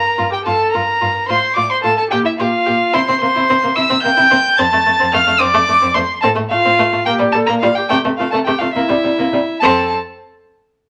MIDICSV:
0, 0, Header, 1, 5, 480
1, 0, Start_track
1, 0, Key_signature, -1, "major"
1, 0, Tempo, 550459
1, 1131, Time_signature, 6, 3, 24, 8
1, 6401, Tempo, 570885
1, 9386, End_track
2, 0, Start_track
2, 0, Title_t, "Violin"
2, 0, Program_c, 0, 40
2, 0, Note_on_c, 0, 82, 85
2, 275, Note_off_c, 0, 82, 0
2, 289, Note_on_c, 0, 79, 70
2, 336, Note_off_c, 0, 79, 0
2, 395, Note_on_c, 0, 81, 82
2, 619, Note_off_c, 0, 81, 0
2, 624, Note_on_c, 0, 82, 86
2, 1110, Note_off_c, 0, 82, 0
2, 1119, Note_on_c, 0, 84, 86
2, 1355, Note_off_c, 0, 84, 0
2, 1361, Note_on_c, 0, 86, 87
2, 1483, Note_off_c, 0, 86, 0
2, 1489, Note_on_c, 0, 84, 78
2, 1537, Note_off_c, 0, 84, 0
2, 1597, Note_on_c, 0, 81, 91
2, 1719, Note_off_c, 0, 81, 0
2, 1724, Note_on_c, 0, 81, 83
2, 1774, Note_off_c, 0, 81, 0
2, 1839, Note_on_c, 0, 79, 87
2, 1890, Note_off_c, 0, 79, 0
2, 1963, Note_on_c, 0, 76, 78
2, 2013, Note_off_c, 0, 76, 0
2, 2083, Note_on_c, 0, 77, 85
2, 2562, Note_on_c, 0, 84, 97
2, 2575, Note_off_c, 0, 77, 0
2, 2792, Note_off_c, 0, 84, 0
2, 2797, Note_on_c, 0, 84, 97
2, 3279, Note_on_c, 0, 88, 103
2, 3292, Note_off_c, 0, 84, 0
2, 3503, Note_off_c, 0, 88, 0
2, 3509, Note_on_c, 0, 91, 113
2, 3998, Note_on_c, 0, 93, 109
2, 4011, Note_off_c, 0, 91, 0
2, 4477, Note_off_c, 0, 93, 0
2, 4483, Note_on_c, 0, 89, 104
2, 4712, Note_on_c, 0, 86, 120
2, 4725, Note_off_c, 0, 89, 0
2, 5178, Note_on_c, 0, 84, 93
2, 5192, Note_off_c, 0, 86, 0
2, 5415, Note_off_c, 0, 84, 0
2, 5420, Note_on_c, 0, 81, 103
2, 5490, Note_off_c, 0, 81, 0
2, 5662, Note_on_c, 0, 77, 106
2, 6141, Note_off_c, 0, 77, 0
2, 6155, Note_on_c, 0, 79, 95
2, 6225, Note_off_c, 0, 79, 0
2, 6383, Note_on_c, 0, 81, 94
2, 6433, Note_off_c, 0, 81, 0
2, 6506, Note_on_c, 0, 82, 84
2, 6555, Note_off_c, 0, 82, 0
2, 6618, Note_on_c, 0, 77, 92
2, 6746, Note_on_c, 0, 79, 82
2, 6759, Note_off_c, 0, 77, 0
2, 6858, Note_off_c, 0, 79, 0
2, 6863, Note_on_c, 0, 79, 108
2, 6930, Note_off_c, 0, 79, 0
2, 7100, Note_on_c, 0, 77, 76
2, 7214, Note_off_c, 0, 77, 0
2, 7219, Note_on_c, 0, 81, 77
2, 7268, Note_off_c, 0, 81, 0
2, 7336, Note_on_c, 0, 79, 84
2, 7450, Note_on_c, 0, 77, 81
2, 7463, Note_off_c, 0, 79, 0
2, 7566, Note_off_c, 0, 77, 0
2, 7571, Note_on_c, 0, 76, 84
2, 8295, Note_off_c, 0, 76, 0
2, 8301, Note_on_c, 0, 81, 94
2, 8576, Note_off_c, 0, 81, 0
2, 9386, End_track
3, 0, Start_track
3, 0, Title_t, "Viola"
3, 0, Program_c, 1, 41
3, 0, Note_on_c, 1, 70, 74
3, 263, Note_on_c, 1, 67, 64
3, 276, Note_off_c, 1, 70, 0
3, 381, Note_off_c, 1, 67, 0
3, 386, Note_on_c, 1, 69, 74
3, 635, Note_on_c, 1, 70, 70
3, 648, Note_off_c, 1, 69, 0
3, 1113, Note_off_c, 1, 70, 0
3, 1118, Note_on_c, 1, 72, 69
3, 1357, Note_off_c, 1, 72, 0
3, 1362, Note_on_c, 1, 74, 68
3, 1412, Note_off_c, 1, 74, 0
3, 1485, Note_on_c, 1, 72, 67
3, 1595, Note_off_c, 1, 72, 0
3, 1600, Note_on_c, 1, 69, 79
3, 1714, Note_off_c, 1, 69, 0
3, 1719, Note_on_c, 1, 69, 68
3, 1825, Note_off_c, 1, 69, 0
3, 1831, Note_on_c, 1, 67, 87
3, 1950, Note_off_c, 1, 67, 0
3, 1955, Note_on_c, 1, 64, 64
3, 2007, Note_off_c, 1, 64, 0
3, 2072, Note_on_c, 1, 65, 75
3, 2556, Note_on_c, 1, 72, 81
3, 2570, Note_off_c, 1, 65, 0
3, 2790, Note_off_c, 1, 72, 0
3, 2795, Note_on_c, 1, 72, 87
3, 3270, Note_off_c, 1, 72, 0
3, 3281, Note_on_c, 1, 76, 89
3, 3517, Note_off_c, 1, 76, 0
3, 3522, Note_on_c, 1, 79, 98
3, 3989, Note_off_c, 1, 79, 0
3, 3994, Note_on_c, 1, 81, 100
3, 4480, Note_on_c, 1, 77, 93
3, 4494, Note_off_c, 1, 81, 0
3, 4714, Note_off_c, 1, 77, 0
3, 4719, Note_on_c, 1, 74, 99
3, 5185, Note_off_c, 1, 74, 0
3, 5195, Note_on_c, 1, 72, 72
3, 5265, Note_off_c, 1, 72, 0
3, 5440, Note_on_c, 1, 69, 82
3, 5509, Note_off_c, 1, 69, 0
3, 5676, Note_on_c, 1, 65, 91
3, 6148, Note_off_c, 1, 65, 0
3, 6161, Note_on_c, 1, 67, 84
3, 6401, Note_on_c, 1, 69, 81
3, 6414, Note_off_c, 1, 67, 0
3, 6517, Note_off_c, 1, 69, 0
3, 6523, Note_on_c, 1, 70, 86
3, 6568, Note_off_c, 1, 70, 0
3, 6635, Note_on_c, 1, 65, 76
3, 6682, Note_off_c, 1, 65, 0
3, 6762, Note_on_c, 1, 67, 67
3, 6807, Note_off_c, 1, 67, 0
3, 6875, Note_on_c, 1, 67, 78
3, 6942, Note_off_c, 1, 67, 0
3, 7110, Note_on_c, 1, 65, 67
3, 7157, Note_off_c, 1, 65, 0
3, 7223, Note_on_c, 1, 69, 70
3, 7272, Note_off_c, 1, 69, 0
3, 7344, Note_on_c, 1, 67, 79
3, 7392, Note_off_c, 1, 67, 0
3, 7463, Note_on_c, 1, 65, 62
3, 7511, Note_off_c, 1, 65, 0
3, 7586, Note_on_c, 1, 64, 77
3, 8302, Note_off_c, 1, 64, 0
3, 8320, Note_on_c, 1, 69, 73
3, 8586, Note_off_c, 1, 69, 0
3, 9386, End_track
4, 0, Start_track
4, 0, Title_t, "Violin"
4, 0, Program_c, 2, 40
4, 157, Note_on_c, 2, 65, 54
4, 226, Note_off_c, 2, 65, 0
4, 400, Note_on_c, 2, 65, 59
4, 470, Note_off_c, 2, 65, 0
4, 645, Note_on_c, 2, 65, 53
4, 715, Note_off_c, 2, 65, 0
4, 882, Note_on_c, 2, 65, 55
4, 951, Note_off_c, 2, 65, 0
4, 1126, Note_on_c, 2, 65, 63
4, 1195, Note_off_c, 2, 65, 0
4, 1360, Note_on_c, 2, 65, 55
4, 1429, Note_off_c, 2, 65, 0
4, 1601, Note_on_c, 2, 65, 56
4, 1671, Note_off_c, 2, 65, 0
4, 1842, Note_on_c, 2, 67, 60
4, 1912, Note_off_c, 2, 67, 0
4, 2088, Note_on_c, 2, 67, 64
4, 2158, Note_off_c, 2, 67, 0
4, 2318, Note_on_c, 2, 67, 54
4, 2388, Note_off_c, 2, 67, 0
4, 2558, Note_on_c, 2, 64, 81
4, 2609, Note_off_c, 2, 64, 0
4, 2690, Note_on_c, 2, 60, 58
4, 2738, Note_off_c, 2, 60, 0
4, 2801, Note_on_c, 2, 58, 59
4, 2850, Note_off_c, 2, 58, 0
4, 2922, Note_on_c, 2, 64, 86
4, 2971, Note_off_c, 2, 64, 0
4, 3048, Note_on_c, 2, 60, 59
4, 3096, Note_off_c, 2, 60, 0
4, 3163, Note_on_c, 2, 58, 63
4, 3212, Note_off_c, 2, 58, 0
4, 3280, Note_on_c, 2, 64, 84
4, 3330, Note_off_c, 2, 64, 0
4, 3398, Note_on_c, 2, 60, 63
4, 3448, Note_off_c, 2, 60, 0
4, 3521, Note_on_c, 2, 58, 65
4, 3570, Note_off_c, 2, 58, 0
4, 3631, Note_on_c, 2, 64, 82
4, 3681, Note_off_c, 2, 64, 0
4, 3754, Note_on_c, 2, 60, 67
4, 3804, Note_off_c, 2, 60, 0
4, 3998, Note_on_c, 2, 60, 81
4, 4047, Note_off_c, 2, 60, 0
4, 4123, Note_on_c, 2, 57, 59
4, 4170, Note_off_c, 2, 57, 0
4, 4235, Note_on_c, 2, 57, 62
4, 4284, Note_off_c, 2, 57, 0
4, 4354, Note_on_c, 2, 60, 83
4, 4403, Note_off_c, 2, 60, 0
4, 4476, Note_on_c, 2, 57, 64
4, 4524, Note_off_c, 2, 57, 0
4, 4594, Note_on_c, 2, 57, 70
4, 4642, Note_off_c, 2, 57, 0
4, 4702, Note_on_c, 2, 60, 97
4, 4753, Note_off_c, 2, 60, 0
4, 4831, Note_on_c, 2, 57, 58
4, 4880, Note_off_c, 2, 57, 0
4, 4957, Note_on_c, 2, 57, 65
4, 5004, Note_off_c, 2, 57, 0
4, 5067, Note_on_c, 2, 60, 76
4, 5117, Note_off_c, 2, 60, 0
4, 5185, Note_on_c, 2, 57, 69
4, 5235, Note_off_c, 2, 57, 0
4, 5432, Note_on_c, 2, 60, 80
4, 5480, Note_off_c, 2, 60, 0
4, 5541, Note_on_c, 2, 57, 56
4, 5592, Note_off_c, 2, 57, 0
4, 5673, Note_on_c, 2, 57, 58
4, 5722, Note_off_c, 2, 57, 0
4, 5795, Note_on_c, 2, 60, 84
4, 5843, Note_off_c, 2, 60, 0
4, 5921, Note_on_c, 2, 57, 65
4, 5968, Note_off_c, 2, 57, 0
4, 6039, Note_on_c, 2, 57, 58
4, 6087, Note_off_c, 2, 57, 0
4, 6152, Note_on_c, 2, 58, 91
4, 6202, Note_off_c, 2, 58, 0
4, 6269, Note_on_c, 2, 55, 61
4, 6319, Note_off_c, 2, 55, 0
4, 6403, Note_on_c, 2, 55, 62
4, 6449, Note_off_c, 2, 55, 0
4, 6519, Note_on_c, 2, 58, 91
4, 6565, Note_off_c, 2, 58, 0
4, 6642, Note_on_c, 2, 55, 69
4, 6687, Note_off_c, 2, 55, 0
4, 6867, Note_on_c, 2, 57, 81
4, 6914, Note_off_c, 2, 57, 0
4, 6993, Note_on_c, 2, 57, 60
4, 7039, Note_off_c, 2, 57, 0
4, 7122, Note_on_c, 2, 57, 55
4, 7166, Note_off_c, 2, 57, 0
4, 7231, Note_on_c, 2, 57, 85
4, 7278, Note_off_c, 2, 57, 0
4, 7350, Note_on_c, 2, 57, 53
4, 7397, Note_off_c, 2, 57, 0
4, 7462, Note_on_c, 2, 57, 57
4, 7510, Note_off_c, 2, 57, 0
4, 7588, Note_on_c, 2, 58, 83
4, 7636, Note_off_c, 2, 58, 0
4, 7704, Note_on_c, 2, 55, 62
4, 7753, Note_off_c, 2, 55, 0
4, 7828, Note_on_c, 2, 55, 56
4, 7877, Note_off_c, 2, 55, 0
4, 7950, Note_on_c, 2, 58, 69
4, 7999, Note_off_c, 2, 58, 0
4, 8074, Note_on_c, 2, 55, 62
4, 8123, Note_off_c, 2, 55, 0
4, 8323, Note_on_c, 2, 60, 79
4, 8588, Note_off_c, 2, 60, 0
4, 9386, End_track
5, 0, Start_track
5, 0, Title_t, "Cello"
5, 0, Program_c, 3, 42
5, 159, Note_on_c, 3, 43, 64
5, 229, Note_off_c, 3, 43, 0
5, 408, Note_on_c, 3, 43, 62
5, 477, Note_off_c, 3, 43, 0
5, 649, Note_on_c, 3, 43, 57
5, 718, Note_off_c, 3, 43, 0
5, 890, Note_on_c, 3, 43, 63
5, 960, Note_off_c, 3, 43, 0
5, 1129, Note_on_c, 3, 45, 63
5, 1199, Note_off_c, 3, 45, 0
5, 1368, Note_on_c, 3, 45, 65
5, 1438, Note_off_c, 3, 45, 0
5, 1604, Note_on_c, 3, 45, 69
5, 1674, Note_off_c, 3, 45, 0
5, 1854, Note_on_c, 3, 46, 71
5, 1924, Note_off_c, 3, 46, 0
5, 2091, Note_on_c, 3, 46, 70
5, 2160, Note_off_c, 3, 46, 0
5, 2332, Note_on_c, 3, 46, 69
5, 2402, Note_off_c, 3, 46, 0
5, 2569, Note_on_c, 3, 48, 75
5, 2617, Note_off_c, 3, 48, 0
5, 2692, Note_on_c, 3, 48, 61
5, 2739, Note_off_c, 3, 48, 0
5, 2811, Note_on_c, 3, 48, 60
5, 2858, Note_off_c, 3, 48, 0
5, 2934, Note_on_c, 3, 48, 85
5, 2980, Note_off_c, 3, 48, 0
5, 3056, Note_on_c, 3, 48, 67
5, 3102, Note_off_c, 3, 48, 0
5, 3175, Note_on_c, 3, 48, 59
5, 3222, Note_off_c, 3, 48, 0
5, 3291, Note_on_c, 3, 48, 78
5, 3338, Note_off_c, 3, 48, 0
5, 3411, Note_on_c, 3, 48, 66
5, 3458, Note_off_c, 3, 48, 0
5, 3530, Note_on_c, 3, 48, 67
5, 3577, Note_off_c, 3, 48, 0
5, 3648, Note_on_c, 3, 48, 93
5, 3695, Note_off_c, 3, 48, 0
5, 3767, Note_on_c, 3, 48, 63
5, 3814, Note_off_c, 3, 48, 0
5, 4007, Note_on_c, 3, 41, 87
5, 4054, Note_off_c, 3, 41, 0
5, 4124, Note_on_c, 3, 41, 64
5, 4171, Note_off_c, 3, 41, 0
5, 4242, Note_on_c, 3, 41, 63
5, 4290, Note_off_c, 3, 41, 0
5, 4367, Note_on_c, 3, 41, 91
5, 4413, Note_off_c, 3, 41, 0
5, 4479, Note_on_c, 3, 41, 66
5, 4527, Note_off_c, 3, 41, 0
5, 4603, Note_on_c, 3, 41, 67
5, 4649, Note_off_c, 3, 41, 0
5, 4724, Note_on_c, 3, 41, 90
5, 4771, Note_off_c, 3, 41, 0
5, 4846, Note_on_c, 3, 41, 68
5, 4892, Note_off_c, 3, 41, 0
5, 4957, Note_on_c, 3, 41, 66
5, 5005, Note_off_c, 3, 41, 0
5, 5081, Note_on_c, 3, 41, 88
5, 5127, Note_off_c, 3, 41, 0
5, 5203, Note_on_c, 3, 41, 67
5, 5249, Note_off_c, 3, 41, 0
5, 5440, Note_on_c, 3, 45, 86
5, 5487, Note_off_c, 3, 45, 0
5, 5558, Note_on_c, 3, 45, 62
5, 5605, Note_off_c, 3, 45, 0
5, 5677, Note_on_c, 3, 45, 65
5, 5724, Note_off_c, 3, 45, 0
5, 5799, Note_on_c, 3, 45, 90
5, 5846, Note_off_c, 3, 45, 0
5, 5914, Note_on_c, 3, 45, 63
5, 5962, Note_off_c, 3, 45, 0
5, 6041, Note_on_c, 3, 45, 69
5, 6089, Note_off_c, 3, 45, 0
5, 6167, Note_on_c, 3, 46, 93
5, 6213, Note_off_c, 3, 46, 0
5, 6285, Note_on_c, 3, 46, 65
5, 6332, Note_off_c, 3, 46, 0
5, 6410, Note_on_c, 3, 46, 67
5, 6455, Note_off_c, 3, 46, 0
5, 6522, Note_on_c, 3, 46, 95
5, 6568, Note_off_c, 3, 46, 0
5, 6645, Note_on_c, 3, 46, 68
5, 6690, Note_off_c, 3, 46, 0
5, 6881, Note_on_c, 3, 48, 86
5, 6926, Note_off_c, 3, 48, 0
5, 7000, Note_on_c, 3, 48, 61
5, 7045, Note_off_c, 3, 48, 0
5, 7120, Note_on_c, 3, 48, 61
5, 7165, Note_off_c, 3, 48, 0
5, 7236, Note_on_c, 3, 48, 84
5, 7282, Note_off_c, 3, 48, 0
5, 7354, Note_on_c, 3, 48, 61
5, 7400, Note_off_c, 3, 48, 0
5, 7475, Note_on_c, 3, 48, 61
5, 7521, Note_off_c, 3, 48, 0
5, 7588, Note_on_c, 3, 48, 82
5, 7635, Note_off_c, 3, 48, 0
5, 7708, Note_on_c, 3, 48, 55
5, 7756, Note_off_c, 3, 48, 0
5, 7830, Note_on_c, 3, 48, 61
5, 7878, Note_off_c, 3, 48, 0
5, 7952, Note_on_c, 3, 48, 84
5, 8001, Note_off_c, 3, 48, 0
5, 8074, Note_on_c, 3, 48, 52
5, 8122, Note_off_c, 3, 48, 0
5, 8316, Note_on_c, 3, 41, 76
5, 8584, Note_off_c, 3, 41, 0
5, 9386, End_track
0, 0, End_of_file